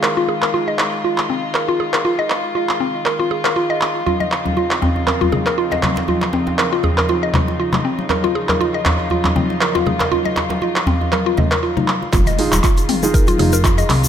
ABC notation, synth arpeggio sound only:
X:1
M:4/4
L:1/16
Q:"Swing 16ths" 1/4=119
K:Fphr
V:1 name="Synth arpeggio sound"
B F A B F e z2 F z C z B F A B | F e z2 F z C z B F A B F e z2 | F e z2 F z C z B F A B F e z2 | F z C z B F A B F e z2 F z C z |
B F A B F e z2 F z C z B F A B | F e z2 F z C z B F e B F E z2 | F e z2 F z C z B F A B F e z2 |]